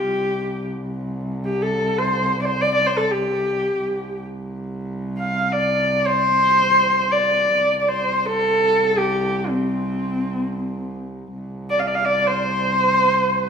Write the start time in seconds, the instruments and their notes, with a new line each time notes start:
Already playing: horsehead fiddle G4
0.02 cello C2
1.45 horsehead fiddle G4
1.62 horsehead fiddle A4
1.98 horsehead fiddle C5
2.41 horsehead fiddle D5
2.45 horsehead fiddle C5
2.61 horsehead fiddle D5
2.75 horsehead fiddle D5
2.86 horsehead fiddle C5
2.97 horsehead fiddle A4
3.11 horsehead fiddle G4
3.79 cello C2
5.19 horsehead fiddle F5
5.52 horsehead fiddle D5
6.07 horsehead fiddle C5
7.12 horsehead fiddle D5
7.57 cello C2
7.79 horsehead fiddle D5
7.88 horsehead fiddle C5
8.26 horsehead fiddle A4
8.98 horsehead fiddle G4
9.49 horsehead fiddle C4
11.34 cello C2
11.70 horsehead fiddle D5
11.79 horsehead fiddle F5
11.87 horsehead fiddle D5
11.95 horsehead fiddle F5
12.05 horsehead fiddle D5
12.27 horsehead fiddle C5